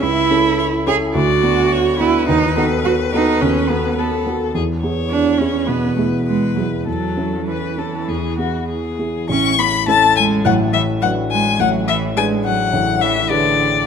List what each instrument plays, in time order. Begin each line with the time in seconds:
0.02 grand piano C#2, cello E4, violin E5
0.31 grand piano C#4 E4 A4
0.59 violin C#5
0.87 grand piano C#4 E4 A4, cello G#4, violin C#5
1.15 grand piano D2, cello F#4, violin D5
1.43 grand piano B3 D4 F#4
1.73 violin C#5
1.99 grand piano B3 D4 F#4, cello E4, violin B4
2.29 grand piano D#2, cello D#4
2.57 grand piano B3 F#4 A4, cello D#4
2.85 cello F#4
3.13 grand piano B3 F#4 A4, cello D#4
3.41 grand piano D#2, cello C#4
3.69 cello B3, grand piano B3 F#4 A4
3.97 cello B3, violin A4
4.27 grand piano B3 F#4 A4
4.55 grand piano E2, violin G#4
4.82 grand piano B3 E4 G#4, violin C#5
5.10 cello D4
5.38 grand piano B3 E4 G#4, cello C#4
5.67 grand piano B2, cello B3, violin B4
5.96 cello A3, grand piano B3 E4 G#4
6.25 cello G#3, violin B4
6.56 cello F#3, grand piano B3 E4 G#4
6.86 grand piano E2, cello F#3, violin A4
7.17 grand piano C#4 E4 A4
7.47 cello E3, violin B4
7.77 grand piano C#4 E4 A4, violin A4
8.08 grand piano E2, violin G#4
8.38 grand piano B3 E4 G#4, violin F#4
8.69 violin G#4
8.99 grand piano B3 E4 G#4
9.29 grand piano A1 A2, cello C#4, violin C#6
9.59 cello B3, violin B5
9.87 cello A3, grand piano C#4 E4 A4, violin A5
10.16 cello G#3, violin G#5
10.45 grand piano A1 A2, cello F#3, violin F#5
10.73 cello E3, violin E5
11.01 cello F#3, grand piano D4 F#4 B4, violin F#5
11.30 cello G#3, violin G#5
11.59 grand piano A1 A2, cello F#3, violin F#5
11.87 cello E3, violin E5
12.16 cello G#3, grand piano D4 G#4 B4, violin G#5
12.45 cello F#3, violin F#5
12.73 grand piano A1 A2
13.01 cello E3, violin E5
13.29 cello D3, grand piano D4 G#4 B4, violin D5